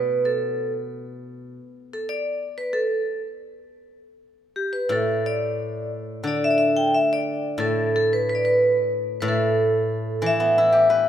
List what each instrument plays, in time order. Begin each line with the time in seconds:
Already playing: guzheng B2, vibraphone B4
0.25 vibraphone A4
1.93 vibraphone A4
2.09 vibraphone D5
2.58 vibraphone B4
2.73 vibraphone A4
4.56 vibraphone G4
4.73 vibraphone B4
4.89 guzheng A2, vibraphone A4
5.26 vibraphone D5
6.24 guzheng D3, vibraphone D5
6.44 vibraphone E5
6.51 vibraphone D5
6.58 vibraphone E5
6.77 vibraphone G5
6.94 vibraphone E5
7.13 vibraphone D5
7.58 guzheng A2, vibraphone A4
7.96 vibraphone A4
8.13 vibraphone B4
8.30 vibraphone B4
8.35 vibraphone D5
8.45 vibraphone B4
9.21 guzheng A2, vibraphone B4
9.28 vibraphone A4
10.22 guzheng E3
10.26 vibraphone E5
10.40 guzheng B3
10.58 guzheng E4
10.72 guzheng G4
10.90 guzheng B4